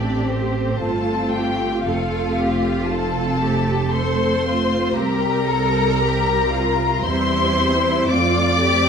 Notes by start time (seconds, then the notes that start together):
Already playing: A1 A3 C4 D4 G4 D5
0.25 C4 C5
0.78 G1 A3 C4 F4 A5
0.83 A4
1.31 G5
1.37 G4
1.83 F1 A3 C4 F5
1.88 F4 A4
2.39 G4
2.85 A5
2.90 A3 C4 F4 A4
3.42 G4
3.91 A3 C4 A4 C5 C6
4.47 F4
4.96 C2 G3 C4 G4 A#4 A#5
5.49 A4
6.01 G4
6.54 F4
7.04 E2 G3 C4 E4 C5 C6
8.09 F2 A3 C4 F4 D5 D6
8.61 G4